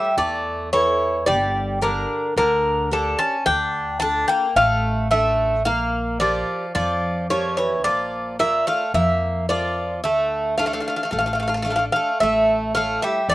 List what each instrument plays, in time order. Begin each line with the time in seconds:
Already playing: bouzouki G3 E5
0.17 upright bass E2, steel-string acoustic guitar E3, bouzouki A3 D5
0.73 bouzouki E3 C#5, steel-string acoustic guitar E4 A4 C#5
1.26 upright bass G1, steel-string acoustic guitar G3, bouzouki G3 D5
1.81 bouzouki D3 A#4, steel-string acoustic guitar G4 A#4 D5
2.36 upright bass D2, steel-string acoustic guitar D3, bouzouki D3 A#4
2.91 bouzouki D3 A4, steel-string acoustic guitar G4 A#4 D5
3.19 bouzouki C#4 A5
3.46 upright bass D2, steel-string acoustic guitar D3, bouzouki D4 G5
4.00 steel-string acoustic guitar D4 F4 A4, bouzouki D4 A5
4.28 bouzouki A#3 G5
4.56 upright bass A1, steel-string acoustic guitar A3, bouzouki A3 F5
5.11 bouzouki A3 E5, steel-string acoustic guitar D4 F4 A4
5.65 upright bass A#1, steel-string acoustic guitar A#3, bouzouki A#3 F5
6.20 bouzouki F3 D5, steel-string acoustic guitar G4 A#4 D5
6.75 upright bass F2, bouzouki F3 D5, steel-string acoustic guitar F3
7.30 bouzouki F3 C#5, steel-string acoustic guitar G4 A#4 D5
7.57 bouzouki E3 C#5
7.84 upright bass A#1, bouzouki F3 D5, steel-string acoustic guitar A#3
8.39 bouzouki A#3 E5, steel-string acoustic guitar F4 A#4 D5
8.67 bouzouki A3 F5
8.94 upright bass F2, steel-string acoustic guitar F3, bouzouki A#3 E5
9.49 bouzouki F3 D5, steel-string acoustic guitar F4 A#4 D5
10.04 upright bass D2, steel-string acoustic guitar D3, bouzouki A3 E5
10.58 bouzouki A3 F5, steel-string acoustic guitar D4 F4 A4
10.66 bouzouki A3 F5
10.73 bouzouki A3 F5
10.81 bouzouki A3 F5
10.88 bouzouki A3 F5
10.96 bouzouki A3 F5
11.03 bouzouki A3 F5
11.11 upright bass A1, bouzouki A3 F5, steel-string acoustic guitar A3
11.19 bouzouki A3 F5
11.26 bouzouki A3 F5
11.33 bouzouki A3 F5
11.40 bouzouki A3 F5
11.48 bouzouki A3 F5
11.54 bouzouki A3 F5
11.62 bouzouki A3 F5, steel-string acoustic guitar D4 F4
11.67 steel-string acoustic guitar A4, bouzouki F5
11.72 bouzouki A3 F5
11.79 bouzouki A3
11.92 bouzouki A3 F5
12.20 upright bass A1, steel-string acoustic guitar A3, bouzouki A3 E5
12.75 bouzouki A3 F5, steel-string acoustic guitar E4 A4 C#5
13.02 bouzouki G3 E5
13.29 upright bass E2, steel-string acoustic guitar E3, bouzouki A3 D5